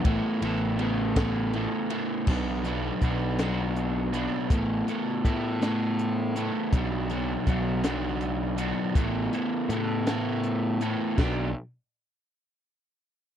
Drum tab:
CC |------|x-----|------|------|
RD |xxxxxx|------|------|------|
HH |------|-xxxxx|xxxxxx|xxxxxx|
SD |---o--|---o--|---o--|---o--|
BD |o--o--|o-o---|o-o---|o-o---|

CC |------|x-----|
RD |------|------|
HH |xxxxxx|------|
SD |---o--|o-----|
BD |o-----|o-----|